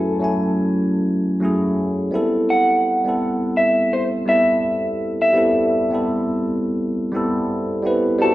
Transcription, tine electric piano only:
Already playing: F#3 A3 C#4 E4 F#4 G#5
0.20 F#3 A3 C#4 E4
0.24 G#5
1.40 F#3 A3 C#4 E4
1.45 G#4
2.11 G3 B3 C4 E4
2.15 A4
3.04 G3 B3 C4 E4
3.09 A4
4.26 G3 B3 C4 E4
4.30 A4
5.33 G3 B3 C4 E4
5.38 A4
5.90 G3 B3 C4 E4
5.95 A4
7.12 G3 B3 C4 E4
7.16 A4
7.83 G3 B3 C4 E4
7.87 B4
8.19 G3 B3 C4 E4
8.23 F#4

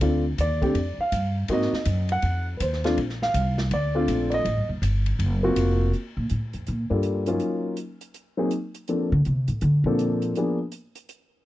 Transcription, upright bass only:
0.01 D2
0.38 D#2
0.74 F2
0.98 muted upright bass stroke
1.12 G2
1.49 G#2
1.72 muted upright bass stroke
1.86 F#2
2.23 F2
2.60 D#2
2.97 A#1
3.34 C2
3.71 D2
4.08 A#1
4.45 A1
4.57 G1
4.69 D#1
4.82 G1
5.19 F#1
5.56 F1
6.17 A#2
6.31 A2
6.54 F2
6.68 A#2
6.90 G2
9.12 D3
9.26 C3
9.48 A2
9.62 D3
9.84 A#2

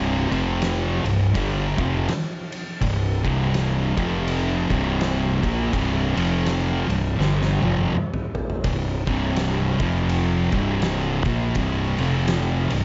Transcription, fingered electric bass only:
Already playing: C1
0.31 F1
1.04 C1
1.35 G1
1.78 F1
2.81 C1
3.25 C1
3.97 F1
4.70 C1
5.43 A#1
5.73 C1
6.16 F1
6.89 C1
7.18 G1
7.62 F1
8.64 C1
9.07 C1
9.80 F1
10.53 C1
11.26 A#1
11.56 C1
11.99 F1
12.71 C1

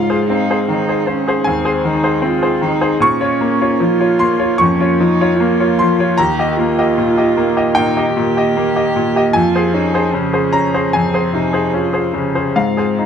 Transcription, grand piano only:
Already playing: F5
0.10 G#4 C5
0.30 C4
0.50 G#4 C5
0.69 D#3
0.89 G#4 C5
1.07 C5
1.28 G#4 C5
1.44 D#2 G#5
1.65 G#4 C5
1.85 D#3
2.04 G#4 C5
2.22 C4
2.42 G#4 C5
2.61 D#3
2.81 G#4 C5
3.00 A#2 C#6
3.21 F4 C#5
3.41 A#3
3.61 F4 C#5
3.80 F3
4.00 F4 C#5
4.19 A#3 C6
4.39 F4 C#5
4.58 F2 C#6
4.80 F4 C#5
5.00 F3
5.21 F4 C#5
5.40 A#3
5.60 F4 C#5
5.79 F3 C6
6.00 F4 C#5
6.18 D#2 A#5
6.39 G4 D#5
6.59 A#3
6.79 G4 D#5
6.98 A#2
7.18 G4 D#5
7.37 A#3
7.57 G4 D#5
7.75 A#2 G5
7.97 G4 D#5
8.17 A#2
8.37 G4 D#5
8.57 A#3
8.76 G4 D#5
8.96 A#2
9.16 G4 D#5
9.33 F2 G#5
9.55 G#4 C5
9.74 C#4
9.94 G#4 C5
10.14 C#3
10.33 G#4 C5
10.53 C#4 A#5
10.74 G#4 C5
10.93 F2 G#5
11.14 G#4 C5
11.34 C3
11.53 G#4 C5
11.74 C#4
11.93 G#4 C5
12.13 C#3
12.35 G#4 C5
12.56 G#2 F5
12.77 G#4 C5
12.99 D#4

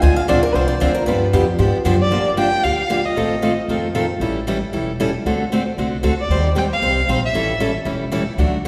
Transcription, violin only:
2.01 D5
2.38 G5
2.64 F5
3.05 D#5
6.21 D5
6.58 G5
6.73 F5
7.25 E5

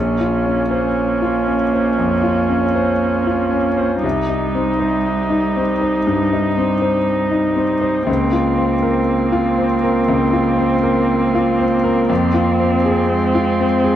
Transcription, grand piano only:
Already playing: A#1
0.20 F4
0.46 C#4
0.71 C5
1.22 F4
1.47 C#4
1.73 C5
1.98 F2
2.23 F4
2.49 C#4
2.75 C5
3.27 F4
3.52 C#4
3.77 C5
4.04 C2
4.29 D#4
4.55 C4
4.80 C5
5.30 D#4
5.57 C4
5.81 C5
6.07 G2
6.33 D#4
6.58 C4
6.82 C5
7.31 D#4
7.56 C4
7.81 C5
8.07 C#2
8.33 F4
8.58 C4
8.82 A#4
9.32 F4
9.58 C4
9.83 A#4
10.08 C#2
10.33 F4
10.58 C4
10.83 A#4
11.35 F4
11.59 C4
11.84 A#4
12.09 F2
12.34 F4
12.60 C4
12.85 G#4
13.35 F4
13.60 C4
13.84 G#4

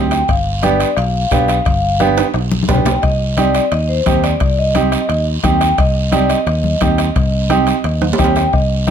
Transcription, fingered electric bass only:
Already playing: D2
0.29 G1
0.97 B1
1.32 B1
1.66 G1
2.34 B1
2.69 B1
3.03 C2
3.72 D#2
4.07 D#2
4.41 C2
5.09 D#2
5.44 D#2
5.78 C2
6.47 D#2
6.81 D#2
7.16 C2
7.84 D#2
8.19 D#2
8.53 C2

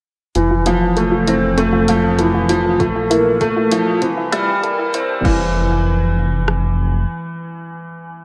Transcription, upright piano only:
0.36 E3
0.67 F3
0.98 A3
1.28 C4
1.57 A3
1.89 F3
2.20 E3
2.49 F3
2.80 A3
3.10 A#3
3.41 A3
3.72 F3
4.02 E3
4.32 G3
4.63 A#3
4.94 C4
5.25 E3

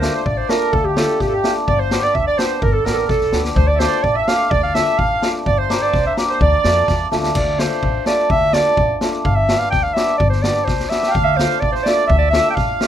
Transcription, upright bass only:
0.26 A1
0.73 D2
1.21 G#1
1.68 G1
2.15 D2
2.62 G1
2.86 A1
3.09 B1
3.33 D2
3.56 D2
4.04 A1
4.51 D2
4.99 A1
5.47 G1
5.94 C2
6.41 D2
6.65 F2
6.88 E2
7.12 D2
7.36 D2
7.83 A1
8.30 D2
8.78 A1
9.25 G1
9.73 D2
10.20 G1
10.68 C2
11.15 D2
11.63 A1
12.10 D2
12.57 A1

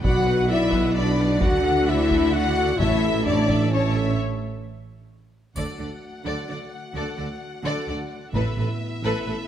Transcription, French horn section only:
0.05 F#4
0.49 E4
0.95 D4
1.40 F#4
1.88 E4
2.33 F#4
2.78 E4
3.24 D4
3.69 C#4
5.57 A3 F#4
8.36 B3 E4

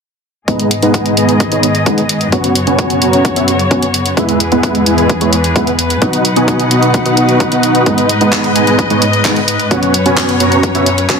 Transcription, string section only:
0.48 G#2 D#3 B3 G#4 D#5
2.32 F#2 C#3 F#4 C#5
4.17 E2 E3 G#4 B4
6.02 B2 F#3 D#4 F#5
7.86 G#2 G#3 D#5
9.71 F#2 F#3 C#4 C#5

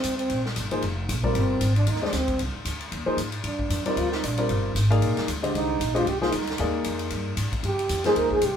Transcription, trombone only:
Already playing: C4
0.17 C4
1.35 C4
1.77 D4
1.89 D#4
2.03 D4
2.16 C4
3.46 D4
3.87 D#4
3.98 F4
4.12 D#4
4.26 D4
5.55 D#4
5.96 F4
6.08 G4
6.21 F4
6.33 D#4
7.66 G4
8.06 G#4
8.18 A#4
8.32 G#4
8.44 G4

